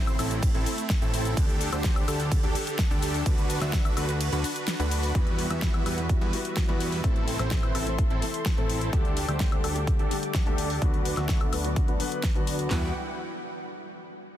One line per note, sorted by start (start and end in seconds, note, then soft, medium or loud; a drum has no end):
0.00 0.17 A1 loud
0.00 1.35 A3 medium
0.00 0.16 C4 medium
0.00 1.35 C4 medium
0.00 0.16 E4 medium
0.00 1.35 E4 medium
0.00 0.16 C5 medium
0.07 closed hi-hat soft
0.07 high woodblock medium
0.07 shaker soft
0.19 0.52 A1 loud
0.19 0.33 C4 loud
0.19 0.33 E4 medium
0.19 0.33 A4 loud
0.19 open hi-hat loud
0.19 high woodblock medium
0.19 shaker medium
0.31 closed hi-hat medium
0.31 shaker soft
0.43 kick loud
0.43 closed hi-hat medium
0.43 ride medium
0.43 shaker soft
0.54 0.66 A1 loud
0.54 0.69 C4 loud
0.54 0.69 E4 medium
0.54 0.69 A4 loud
0.54 closed hi-hat soft
0.66 open hi-hat loud
0.66 shaker medium
0.78 closed hi-hat medium
0.78 shaker soft
0.90 kick loud
0.90 snare loud
0.90 closed hi-hat medium
0.90 ride medium
0.90 shaker soft
1.02 1.35 A1 loud
1.02 1.34 C4 medium
1.02 1.34 E4 medium
1.02 1.34 A4 medium
1.02 closed hi-hat soft
1.02 shaker soft
1.14 open hi-hat loud
1.14 shaker medium
1.25 closed hi-hat medium
1.25 shaker soft
1.37 1.70 D2 loud
1.37 5.11 D3 medium
1.37 1.70 D4 medium
1.37 5.11 D4 medium
1.37 1.70 G4 medium
1.37 3.24 G4 medium
1.37 1.70 A4 medium
1.37 3.24 A4 medium
1.37 kick loud
1.37 closed hi-hat medium
1.37 ride medium
1.37 shaker soft
1.49 closed hi-hat soft
1.49 shaker soft
1.61 open hi-hat loud
1.61 shaker medium
1.72 2.06 D2 loud
1.72 2.05 D4 medium
1.72 2.05 G4 medium
1.72 2.05 C5 medium
1.72 closed hi-hat medium
1.72 high woodblock medium
1.72 shaker soft
1.84 kick loud
1.84 snare loud
1.84 closed hi-hat medium
1.84 ride medium
1.84 shaker soft
1.96 closed hi-hat soft
1.96 high woodblock medium
1.96 shaker soft
2.08 2.41 D2 loud
2.08 2.22 D4 loud
2.08 2.22 G4 medium
2.08 2.22 A4 loud
2.08 open hi-hat loud
2.08 high woodblock medium
2.08 shaker medium
2.20 closed hi-hat medium
2.20 shaker soft
2.32 kick loud
2.32 closed hi-hat medium
2.32 ride medium
2.32 shaker soft
2.43 2.55 D2 loud
2.43 2.58 D4 loud
2.43 2.58 G4 medium
2.43 2.58 A4 loud
2.43 closed hi-hat soft
2.55 open hi-hat loud
2.55 shaker medium
2.67 closed hi-hat medium
2.67 shaker soft
2.79 kick loud
2.79 snare loud
2.79 closed hi-hat medium
2.79 ride medium
2.79 shaker soft
2.90 3.24 D2 loud
2.90 3.23 D4 medium
2.90 3.23 G4 medium
2.90 3.23 A4 medium
2.90 closed hi-hat soft
2.90 shaker soft
3.02 open hi-hat loud
3.02 shaker medium
3.14 open hi-hat medium
3.14 shaker soft
3.26 3.59 D2 loud
3.26 3.59 D4 medium
3.26 3.59 F#4 medium
3.26 5.13 F#4 medium
3.26 3.59 B4 medium
3.26 5.13 B4 medium
3.26 kick loud
3.26 closed hi-hat medium
3.26 ride medium
3.26 shaker soft
3.38 closed hi-hat soft
3.38 shaker soft
3.50 open hi-hat loud
3.50 shaker medium
3.61 3.95 D2 loud
3.61 3.94 D4 medium
3.61 3.94 F#4 medium
3.61 3.94 E5 medium
3.61 snare soft
3.61 closed hi-hat medium
3.61 high woodblock medium
3.61 shaker soft
3.73 kick loud
3.73 snare loud
3.73 closed hi-hat medium
3.73 ride medium
3.73 shaker soft
3.85 closed hi-hat soft
3.85 high woodblock medium
3.85 shaker soft
3.97 4.30 D2 loud
3.97 4.11 D4 loud
3.97 4.11 F#4 medium
3.97 4.11 B4 loud
3.97 open hi-hat loud
3.97 high woodblock medium
3.97 shaker medium
4.09 closed hi-hat medium
4.09 shaker soft
4.21 closed hi-hat medium
4.21 ride medium
4.21 shaker soft
4.32 4.44 D2 loud
4.32 4.47 D4 medium
4.32 4.47 F#4 medium
4.32 4.47 B4 loud
4.32 closed hi-hat soft
4.32 shaker soft
4.44 open hi-hat loud
4.44 shaker medium
4.56 closed hi-hat medium
4.56 shaker soft
4.68 snare loud
4.68 closed hi-hat medium
4.68 ride medium
4.68 shaker soft
4.79 5.13 D2 loud
4.79 5.12 D4 medium
4.79 5.12 F#4 medium
4.79 5.12 B4 medium
4.79 closed hi-hat soft
4.79 shaker soft
4.91 open hi-hat loud
4.91 shaker medium
5.03 open hi-hat medium
5.03 shaker soft
5.14 5.48 E2 medium
5.14 5.36 E3 medium
5.14 5.36 G3 medium
5.14 5.48 G3 medium
5.14 5.48 B3 medium
5.14 5.37 B3 medium
5.14 5.48 E4 medium
5.14 5.48 F#4 medium
5.14 7.02 F#4 medium
5.14 5.37 F#4 medium
5.14 5.48 B4 medium
5.14 7.02 B4 medium
5.14 8.89 E5 medium
5.14 kick loud
5.14 closed hi-hat medium
5.27 closed hi-hat soft
5.39 open hi-hat loud
5.50 5.83 E2 loud
5.50 5.71 E3 medium
5.50 5.71 G3 medium
5.50 5.83 G3 medium
5.50 5.83 B3 medium
5.50 5.71 B3 medium
5.50 5.83 E4 medium
5.50 5.83 F#4 medium
5.50 5.71 F#4 medium
5.50 5.83 E5 medium
5.50 closed hi-hat soft
5.50 high woodblock medium
5.62 kick loud
5.62 snare loud
5.62 closed hi-hat medium
5.73 5.87 E3 medium
5.73 5.87 G3 medium
5.73 5.87 B3 medium
5.73 5.88 G4 medium
5.73 closed hi-hat soft
5.73 high woodblock medium
5.86 6.19 E2 loud
5.86 6.00 G3 medium
5.86 6.00 B3 medium
5.86 6.00 E4 medium
5.86 6.00 F#4 medium
5.86 6.00 B4 loud
5.86 open hi-hat loud
5.86 high woodblock medium
5.97 6.30 E3 medium
5.97 6.30 G3 medium
5.97 6.30 B3 medium
5.97 6.31 F#4 medium
5.97 closed hi-hat medium
6.09 kick loud
6.09 closed hi-hat medium
6.21 6.33 E2 medium
6.21 6.35 G3 medium
6.21 6.35 B3 medium
6.21 6.35 E4 medium
6.21 6.35 F#4 medium
6.21 6.35 B4 loud
6.21 closed hi-hat soft
6.32 6.65 E3 medium
6.32 6.66 G3 medium
6.32 6.66 B3 medium
6.32 6.66 F#4 medium
6.32 open hi-hat loud
6.45 closed hi-hat medium
6.57 kick loud
6.57 snare loud
6.57 closed hi-hat medium
6.68 7.02 E2 medium
6.68 6.90 E3 medium
6.68 6.90 G3 medium
6.68 7.01 G3 medium
6.68 7.01 B3 medium
6.68 6.90 B3 medium
6.68 7.01 E4 medium
6.68 7.01 F#4 medium
6.68 6.90 F#4 loud
6.68 7.01 B4 medium
6.68 closed hi-hat soft
6.80 open hi-hat loud
6.92 open hi-hat medium
7.03 7.37 A1 medium
7.03 7.25 E3 medium
7.03 7.25 A3 medium
7.03 7.37 C4 medium
7.03 7.26 C4 medium
7.03 7.37 E4 medium
7.03 7.37 A4 medium
7.03 10.78 A4 medium
7.03 7.26 A4 medium
7.03 8.91 C5 medium
7.03 8.91 C6 medium
7.03 kick loud
7.03 closed hi-hat soft
7.16 closed hi-hat soft
7.28 open hi-hat loud
7.39 7.72 A1 loud
7.39 7.60 E3 medium
7.39 7.60 A3 medium
7.39 7.72 C4 medium
7.39 7.60 C4 medium
7.39 7.72 E4 medium
7.39 7.61 A4 medium
7.39 7.72 C5 medium
7.39 snare soft
7.39 closed hi-hat medium
7.39 high woodblock medium
7.51 kick loud
7.51 snare loud
7.51 closed hi-hat medium
7.63 7.76 E3 medium
7.63 7.76 A3 medium
7.63 7.77 C4 medium
7.63 7.77 B4 medium
7.63 closed hi-hat soft
7.63 high woodblock medium
7.75 8.08 A1 loud
7.75 7.89 C4 loud
7.75 7.89 E4 medium
7.75 7.89 A4 loud
7.75 open hi-hat loud
7.75 high woodblock medium
7.86 8.19 E3 medium
7.86 8.19 A3 medium
7.86 8.19 C4 medium
7.86 8.20 A4 medium
7.86 closed hi-hat medium
7.99 kick loud
7.99 closed hi-hat medium
8.10 8.22 A1 medium
8.10 8.25 C4 medium
8.10 8.25 E4 medium
8.10 8.25 A4 loud
8.10 closed hi-hat soft
8.21 8.54 E3 medium
8.21 8.55 A3 medium
8.21 8.55 C4 medium
8.21 8.55 A4 medium
8.21 open hi-hat loud
8.34 closed hi-hat medium
8.46 kick loud
8.46 snare loud
8.46 closed hi-hat medium
8.57 8.91 A1 medium
8.57 8.79 E3 loud
8.57 8.79 A3 medium
8.57 8.90 C4 medium
8.57 8.79 C4 medium
8.57 8.90 E4 medium
8.57 8.90 A4 medium
8.57 8.79 A4 loud
8.57 closed hi-hat soft
8.70 open hi-hat loud
8.81 closed hi-hat medium
8.92 9.26 D2 loud
8.92 9.14 D3 medium
8.92 9.14 G3 medium
8.92 9.14 A3 medium
8.92 9.26 D4 medium
8.92 9.26 G4 medium
8.92 9.15 G4 medium
8.92 9.26 A4 medium
8.92 12.67 D5 medium
8.92 10.80 G5 medium
8.92 12.67 D6 medium
8.92 kick loud
8.92 closed hi-hat soft
9.05 closed hi-hat soft
9.17 open hi-hat loud
9.28 9.61 D2 loud
9.28 9.49 D3 medium
9.28 9.49 G3 medium
9.28 9.49 A3 medium
9.28 9.61 D4 medium
9.28 9.61 G4 medium
9.28 9.50 G4 medium
9.28 9.61 C5 medium
9.28 closed hi-hat soft
9.28 high woodblock medium
9.40 kick loud
9.40 snare loud
9.40 closed hi-hat soft
9.51 9.65 D3 medium
9.51 9.65 G3 medium
9.51 9.65 A3 medium
9.51 9.66 A4 medium
9.51 closed hi-hat soft
9.51 high woodblock medium
9.64 9.97 D2 loud
9.64 9.78 D4 loud
9.64 9.78 G4 medium
9.64 9.78 A4 loud
9.64 open hi-hat loud
9.64 high woodblock medium
9.75 10.08 D3 medium
9.75 10.08 G3 medium
9.75 10.08 A3 medium
9.75 10.09 G4 medium
9.75 closed hi-hat soft
9.87 kick loud
9.87 closed hi-hat medium
9.99 10.11 D2 medium
9.99 10.13 D4 medium
9.99 10.13 G4 medium
9.99 10.13 A4 loud
9.99 closed hi-hat soft
10.10 10.43 D3 medium
10.10 10.43 G3 medium
10.10 10.44 A3 medium
10.10 10.44 G4 medium
10.10 open hi-hat loud
10.23 closed hi-hat soft
10.35 kick loud
10.35 snare loud
10.35 closed hi-hat medium
10.46 10.80 D2 medium
10.46 10.68 D3 loud
10.46 10.68 G3 medium
10.46 10.68 A3 medium
10.46 10.79 D4 medium
10.46 10.79 G4 medium
10.46 10.68 G4 loud
10.46 10.79 A4 medium
10.46 closed hi-hat soft
10.58 open hi-hat loud
10.70 open hi-hat medium
10.81 11.15 D2 loud
10.81 11.03 D3 medium
10.81 11.03 F#3 medium
10.81 11.03 B3 medium
10.81 11.15 D4 medium
10.81 11.15 F#4 medium
10.81 11.04 F#4 loud
10.81 12.69 B4 medium
10.81 11.15 B4 medium
10.81 12.69 F#5 medium
10.81 kick loud
10.81 closed hi-hat soft
10.94 closed hi-hat soft
11.05 open hi-hat loud
11.17 11.50 D2 loud
11.17 11.38 D3 medium
11.17 11.38 F#3 medium
11.17 11.38 B3 medium
11.17 11.50 D4 medium
11.17 11.50 F#4 medium
11.17 11.38 F#4 medium
11.17 11.50 E5 medium
11.17 snare soft
11.17 closed hi-hat soft
11.17 high woodblock medium
11.29 kick loud
11.29 snare loud
11.29 closed hi-hat soft
11.40 11.54 D3 medium
11.40 11.54 F#3 medium
11.40 11.54 B3 medium
11.40 11.55 A4 medium
11.40 closed hi-hat soft
11.40 high woodblock medium
11.53 11.86 D2 loud
11.53 11.67 D4 loud
11.53 11.67 F#4 medium
11.53 11.67 B4 loud
11.53 open hi-hat loud
11.53 high woodblock medium
11.64 11.97 D3 medium
11.64 11.97 F#3 medium
11.64 11.97 B3 medium
11.64 11.97 F#4 medium
11.64 closed hi-hat medium
11.76 kick loud
11.76 closed hi-hat medium
11.88 12.00 D2 medium
11.88 12.03 D4 loud
11.88 12.03 F#4 medium
11.88 12.03 B4 loud
11.88 closed hi-hat soft
11.99 12.21 D3 medium
11.99 12.21 F#3 medium
11.99 12.22 B3 medium
11.99 12.22 B4 medium
11.99 open hi-hat loud
12.12 closed hi-hat soft
12.23 kick loud
12.23 snare loud
12.23 closed hi-hat soft
12.35 12.69 D2 loud
12.35 12.68 D3 medium
12.35 12.68 F#3 medium
12.35 12.68 B3 medium
12.35 12.68 D4 medium
12.35 12.68 F#4 medium
12.35 12.68 F#4 loud
12.35 12.68 B4 medium
12.35 closed hi-hat soft
12.47 open hi-hat loud
12.59 closed hi-hat soft
12.69 12.93 E2 medium
12.69 12.88 E3 medium
12.69 12.93 E3 medium
12.69 12.88 G3 medium
12.69 12.89 G3 medium
12.69 12.89 B3 medium
12.69 12.93 E4 medium
12.69 12.89 E4 medium
12.69 12.89 F#4 medium
12.69 12.90 F#4 medium
12.69 12.89 B4 loud
12.69 12.93 F#5 medium
12.69 12.93 G5 medium
12.69 snare loud
12.69 clap medium
12.69 floor tom loud